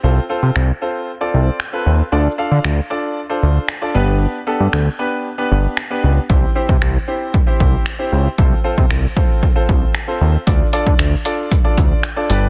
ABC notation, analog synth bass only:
X:1
M:4/4
L:1/16
Q:1/4=115
K:Ddor
V:1 name="Analog synth bass" clef=bass
C,,2 z C, C,,2 z4 C,,2 z2 _E,,2 | D,,2 z D, D,,2 z4 D,,2 z2 G,,,2- | G,,,2 z G,, D,,2 z4 G,,,2 z2 _D,,2 | C,,2 z C, C,,2 z4 C,,2 z2 _D,,2 |
C,,2 z C, C,,2 z4 C,,2 z2 _E,,2 | D,,2 z D, D,,2 z4 D,,2 z2 G,,,2 |]